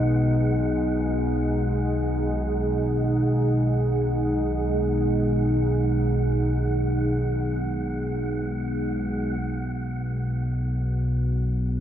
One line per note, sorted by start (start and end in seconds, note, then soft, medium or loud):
0.00 9.42 B1 medium
0.00 9.42 B2 medium
0.00 9.42 G#3 medium
0.00 9.42 D#4 medium
0.00 9.43 G#4 medium
0.00 9.44 F#5 medium
9.43 11.80 B1 medium
9.43 11.80 B2 medium
9.43 11.80 B3 medium
11.34 11.80 F#4 medium